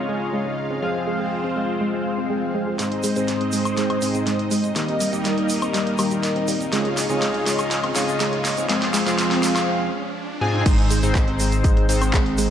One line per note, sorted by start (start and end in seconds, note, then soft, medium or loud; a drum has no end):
0.00 0.80 C#3 medium
0.00 2.75 G#3 medium
0.00 0.80 C#4 medium
0.00 0.78 D#4 medium
0.00 0.80 F4 medium
0.00 2.75 F4 medium
0.00 0.80 G#4 medium
0.00 0.81 C#5 medium
0.00 0.80 D#5 medium
0.00 2.75 F5 medium
0.09 0.14 G#3 medium
0.33 0.39 G#3 loud
0.46 0.49 G#3 medium
0.70 0.76 C4 medium
0.82 2.76 F3 medium
0.82 0.88 G#3 medium
0.82 2.77 C4 medium
0.82 2.76 C4 medium
0.82 2.76 F4 medium
0.82 2.76 G#4 medium
0.82 2.77 C5 medium
0.82 2.76 F5 medium
1.07 1.12 G#3 medium
1.20 1.23 G#3 medium
1.44 1.49 C4 medium
1.56 1.62 G#3 medium
1.81 1.86 G#3 medium
1.81 swell medium
1.93 1.96 G#3 medium
2.18 2.23 C4 medium
2.30 2.35 G#3 medium
2.54 2.60 G#3 loud
2.67 2.70 G#3 medium
2.79 3.13 G#2 medium
2.79 2.84 G#3 medium
2.79 3.13 G#3 medium
2.79 4.74 G#3 medium
2.79 3.13 C4 medium
2.79 4.74 C4 medium
2.79 3.13 D#4 medium
2.79 8.65 D#4 medium
2.79 3.13 C5 medium
2.79 4.74 C5 medium
2.79 6.69 D#5 medium
2.79 snare soft
2.79 closed hi-hat loud
2.79 riser medium
2.79 shaker soft
2.92 closed hi-hat soft
3.03 3.09 G#3 loud
3.03 open hi-hat loud
3.03 shaker medium
3.16 3.99 G#2 medium
3.16 3.99 G#3 medium
3.16 3.19 G#3 medium
3.16 3.99 C4 medium
3.16 3.99 D#4 medium
3.16 3.99 C5 loud
3.16 closed hi-hat soft
3.16 shaker soft
3.28 snare soft
3.28 closed hi-hat medium
3.28 shaker soft
3.41 3.46 C4 medium
3.41 closed hi-hat soft
3.52 3.58 G#3 medium
3.52 open hi-hat medium
3.52 shaker medium
3.65 closed hi-hat soft
3.65 high woodblock medium
3.65 shaker soft
3.77 3.83 G#3 loud
3.77 snare soft
3.77 closed hi-hat medium
3.77 shaker soft
3.90 3.93 G#3 medium
3.90 closed hi-hat soft
3.90 high woodblock medium
4.02 4.73 G#2 medium
4.02 4.73 G#3 medium
4.02 4.73 C4 medium
4.02 4.73 D#4 medium
4.02 4.73 C5 medium
4.02 open hi-hat loud
4.02 shaker medium
4.14 4.20 C4 medium
4.14 closed hi-hat soft
4.14 shaker soft
4.27 4.32 G#3 medium
4.27 snare medium
4.27 closed hi-hat medium
4.27 shaker soft
4.39 closed hi-hat soft
4.51 4.57 G#3 loud
4.51 open hi-hat medium
4.51 shaker medium
4.64 4.67 G#3 medium
4.64 closed hi-hat soft
4.64 shaker soft
4.76 5.10 D#3 medium
4.76 6.71 G3 medium
4.76 5.10 A#3 medium
4.76 6.71 A#3 medium
4.76 5.10 D#4 medium
4.76 5.10 G4 medium
4.76 6.71 A#4 medium
4.76 5.10 D#5 medium
4.76 snare medium
4.76 closed hi-hat medium
4.76 shaker soft
4.88 4.93 C4 medium
4.88 closed hi-hat soft
5.00 5.06 G3 medium
5.00 open hi-hat loud
5.00 shaker medium
5.13 5.96 D#3 medium
5.13 5.96 A#3 medium
5.13 5.96 D#4 medium
5.13 5.96 G4 medium
5.13 5.96 D#5 loud
5.13 closed hi-hat soft
5.13 shaker medium
5.25 5.30 G3 loud
5.25 snare medium
5.25 closed hi-hat medium
5.25 shaker soft
5.37 5.41 G3 medium
5.37 closed hi-hat soft
5.49 open hi-hat medium
5.49 shaker medium
5.62 5.67 C4 medium
5.62 closed hi-hat soft
5.62 high woodblock medium
5.62 shaker soft
5.74 5.80 G3 medium
5.74 snare medium
5.74 closed hi-hat medium
5.74 shaker soft
5.87 closed hi-hat soft
5.98 6.70 D#3 medium
5.98 6.04 G3 loud
5.98 6.70 A#3 medium
5.98 6.70 D#4 medium
5.98 6.70 G4 medium
5.98 6.70 D#5 medium
5.98 open hi-hat loud
5.98 high woodblock medium
5.98 shaker medium
6.11 6.14 G3 medium
6.11 closed hi-hat soft
6.11 shaker medium
6.23 snare medium
6.23 closed hi-hat medium
6.23 shaker soft
6.36 6.41 C4 medium
6.36 closed hi-hat soft
6.48 6.53 G3 medium
6.48 open hi-hat loud
6.48 shaker medium
6.61 closed hi-hat soft
6.61 shaker medium
6.72 7.07 C#3 medium
6.72 9.65 G#3 medium
6.72 6.78 G#3 loud
6.72 7.07 C#4 medium
6.72 7.07 F4 medium
6.72 9.65 F4 medium
6.72 7.07 G#4 medium
6.72 8.67 C#5 medium
6.72 7.07 D#5 medium
6.72 9.65 F5 medium
6.72 snare medium
6.72 closed hi-hat medium
6.72 shaker soft
6.85 6.88 G#3 medium
6.85 closed hi-hat soft
6.97 snare medium
6.97 open hi-hat loud
6.97 shaker medium
7.09 7.93 C#3 medium
7.09 7.15 C4 medium
7.09 7.93 C#4 medium
7.09 7.93 F4 medium
7.09 7.93 G#4 medium
7.09 7.93 D#5 loud
7.09 closed hi-hat soft
7.09 shaker medium
7.22 7.27 G#3 medium
7.22 snare medium
7.22 closed hi-hat medium
7.22 shaker soft
7.34 closed hi-hat soft
7.46 7.52 G#3 loud
7.46 snare medium
7.46 open hi-hat loud
7.46 shaker medium
7.59 7.62 G#3 medium
7.59 closed hi-hat soft
7.59 high woodblock medium
7.59 shaker soft
7.71 snare medium
7.71 closed hi-hat medium
7.71 shaker soft
7.84 7.89 C4 medium
7.84 closed hi-hat soft
7.84 high woodblock medium
7.95 8.66 C#3 medium
7.95 8.01 G#3 medium
7.95 8.66 C#4 medium
7.95 8.66 F4 medium
7.95 8.66 G#4 medium
7.95 8.66 D#5 medium
7.95 snare medium
7.95 open hi-hat loud
7.95 shaker loud
8.08 closed hi-hat soft
8.08 shaker medium
8.20 8.25 G#3 loud
8.20 snare medium
8.20 closed hi-hat medium
8.20 shaker soft
8.33 8.36 G#3 medium
8.33 closed hi-hat soft
8.45 snare medium
8.45 open hi-hat loud
8.45 shaker medium
8.57 8.62 C4 medium
8.57 closed hi-hat soft
8.57 shaker medium
8.69 9.03 F3 medium
8.69 8.75 G#3 medium
8.69 9.03 C4 medium
8.69 9.67 C4 medium
8.69 9.03 F4 medium
8.69 9.03 G#4 medium
8.69 9.67 C5 medium
8.69 9.03 F5 medium
8.69 snare loud
8.69 closed hi-hat medium
8.69 shaker soft
8.82 snare medium
8.82 closed hi-hat soft
8.94 8.99 G#3 loud
8.94 snare loud
8.94 open hi-hat loud
8.94 shaker medium
9.06 9.89 F3 medium
9.06 9.10 G#3 medium
9.06 9.89 C4 medium
9.06 9.89 F4 medium
9.06 9.89 G#4 medium
9.06 9.89 F5 loud
9.06 snare medium
9.06 closed hi-hat soft
9.06 shaker soft
9.18 snare loud
9.18 closed hi-hat medium
9.18 shaker soft
9.31 9.36 C4 medium
9.31 snare medium
9.31 closed hi-hat soft
9.43 9.48 G#3 medium
9.43 snare loud
9.43 open hi-hat loud
9.43 shaker medium
9.56 snare medium
9.56 closed hi-hat soft
9.56 high woodblock medium
9.56 shaker soft
10.41 10.63 G#2 loud
10.41 10.63 C4 medium
10.41 10.63 F4 medium
10.41 10.63 G#4 medium
10.41 10.63 G#5 loud
10.66 12.50 G#1 medium
10.66 11.00 G#2 medium
10.66 10.71 G#3 medium
10.66 11.00 G#3 medium
10.66 kick loud
10.66 closed hi-hat loud
10.66 crash loud
10.66 shaker soft
10.79 closed hi-hat soft
10.91 10.96 G#3 loud
10.91 open hi-hat loud
10.91 shaker medium
11.03 11.86 G#2 loud
11.03 11.06 G#3 medium
11.03 11.86 G#3 medium
11.03 11.86 C4 medium
11.03 11.86 D#4 medium
11.03 11.86 C5 loud
11.03 closed hi-hat soft
11.03 shaker medium
11.15 kick loud
11.15 clap loud
11.15 closed hi-hat medium
11.15 shaker soft
11.28 11.33 C4 medium
11.28 closed hi-hat soft
11.40 11.45 G#3 medium
11.40 open hi-hat medium
11.40 shaker loud
11.52 closed hi-hat soft
11.52 shaker soft
11.64 11.70 G#3 loud
11.64 kick loud
11.64 closed hi-hat loud
11.64 shaker soft
11.77 11.80 G#3 medium
11.77 closed hi-hat soft
11.89 12.50 G#2 medium
11.89 12.50 G#3 medium
11.89 12.50 C4 medium
11.89 12.50 D#4 medium
11.89 12.50 C5 medium
11.89 open hi-hat loud
11.89 shaker medium
12.02 12.07 C4 medium
12.02 closed hi-hat soft
12.02 high woodblock medium
12.02 shaker medium
12.13 12.19 G#3 medium
12.13 kick loud
12.13 clap loud
12.13 closed hi-hat loud
12.13 shaker soft
12.26 closed hi-hat soft
12.38 12.44 G#3 loud
12.38 open hi-hat loud
12.38 shaker medium